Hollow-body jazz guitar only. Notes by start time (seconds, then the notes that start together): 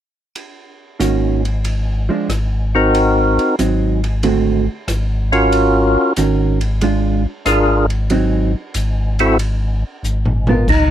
1.00 D#3 A#3 C#4 F#4
2.09 F3 G#3 D4
3.59 F#3 C4 D#4
4.23 D3 A3 C4 F#4
6.18 D#3 C#4 F#4 A#4
6.82 G#3 D4 F4
8.10 F#3 C4 D#4
10.49 B3 F4 A#4